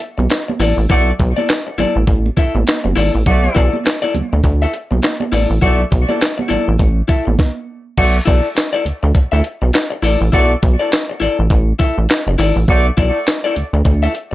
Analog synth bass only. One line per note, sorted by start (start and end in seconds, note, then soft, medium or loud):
0.18 0.28 B1 medium
0.60 0.73 A1 medium
0.77 0.87 A1 medium
0.90 1.12 B1 loud
1.20 1.33 B1 loud
1.78 1.85 A1 soft
1.96 2.05 A1 medium
2.07 2.30 A1 loud
2.55 2.64 A1 loud
2.85 2.94 F#1 medium
2.97 3.10 G#1 loud
3.15 3.24 A1 medium
3.26 3.49 B1 medium
3.56 3.69 B1 loud
4.15 4.22 D2 medium
4.33 4.42 D2 medium
4.44 4.66 D2 loud
4.91 5.00 B1 medium
5.33 5.46 A1 loud
5.50 5.59 A1 medium
5.62 5.84 B1 loud
5.92 6.05 B1 medium
6.50 6.57 A1 soft
6.68 6.77 A1 loud
6.79 7.02 A1 medium
7.27 7.36 A1 loud
7.98 8.20 B1 loud
8.28 8.41 B1 medium
8.85 8.93 D2 soft
9.03 9.12 D2 medium
9.15 9.22 D2 soft
9.33 9.42 D2 loud
9.62 9.71 B1 medium
10.03 10.17 A1 medium
10.21 10.30 A1 loud
10.33 10.55 B1 loud
10.63 10.76 B1 loud
11.21 11.28 A1 soft
11.39 11.48 A1 medium
11.50 11.73 A1 loud
11.98 12.07 A1 medium
12.27 12.36 F#1 medium
12.39 12.52 G#1 medium
12.56 12.65 A1 medium
12.68 12.91 B1 loud
12.98 13.11 B1 loud
13.57 13.64 D2 soft
13.73 13.83 D2 medium
13.85 14.08 D2 medium